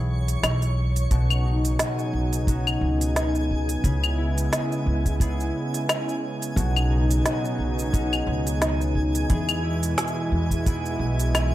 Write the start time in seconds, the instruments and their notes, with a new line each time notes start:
Already playing: upright bass B1, harp E3 B3 E4 G#4, synth texture C#5 C#6
0.28 open hi-hat, shaker
0.43 upright bass B1, harp E4, snare, open hi-hat, claves, shaker
0.62 open hi-hat, shaker
0.96 open hi-hat, shaker
1.11 upright bass B1, harp B2 F#4, analog synth pad C#3 F#3 B3 D#4, synth texture G#4 G#5, kick, open hi-hat, shaker
1.30 claves, shaker
1.45 harp D#4
1.65 open hi-hat, shaker
1.79 harp F#4, snare, open hi-hat, shaker
1.99 shaker
2.13 upright bass B1
2.33 open hi-hat, shaker
2.47 harp C#4 D#4 F#4, kick, open hi-hat, shaker
2.67 claves, shaker
2.81 upright bass C#2
3.01 open hi-hat, shaker
3.16 harp D#4, snare, open hi-hat, shaker
3.35 shaker
3.51 kick
3.69 open hi-hat, shaker
3.84 upright bass C#2, harp C#3 G#4, analog synth pad G#3 E4, kick, open hi-hat, shaker
4.04 claves, shaker
4.18 harp E4
4.38 open hi-hat, shaker
4.52 harp G#4, snare, open hi-hat, shaker
4.72 shaker
4.86 upright bass C#2
5.06 kick, open hi-hat, shaker
5.20 harp B3 E4 G#4, kick, open hi-hat, shaker
5.40 shaker
5.74 open hi-hat, shaker
5.88 harp E4, snare, open hi-hat, claves, shaker
6.09 shaker
6.42 open hi-hat, shaker
6.56 upright bass B1, harp B2 F#4, analog synth pad F#3 B3 D#4, kick, open hi-hat, shaker
6.76 claves, shaker
6.91 harp D#4
7.11 open hi-hat, shaker
7.25 harp F#4, snare, open hi-hat, shaker
7.45 shaker
7.59 upright bass B1
7.79 shaker
7.92 harp C#4 D#4 F#4, kick, open hi-hat, shaker
8.13 claves, shaker
8.27 upright bass C#2
8.47 open hi-hat, shaker
8.61 harp D#4, snare, open hi-hat, shaker
8.81 shaker
8.95 kick
9.15 open hi-hat, shaker
9.29 upright bass E2, analog synth pad B2 E3 G#3 E4, harp E3 G#4, kick, open hi-hat, shaker
9.49 open hi-hat, claves, shaker
9.63 harp E4
9.83 open hi-hat, shaker
9.97 harp G#4, snare, open hi-hat, shaker
10.07 shaker
10.32 upright bass E2
10.51 kick, open hi-hat, shaker
10.66 harp B3 E4 G#4, kick, open hi-hat, shaker
10.86 shaker
10.99 upright bass B1
11.20 open hi-hat, shaker
11.34 harp E4, snare, open hi-hat, claves, shaker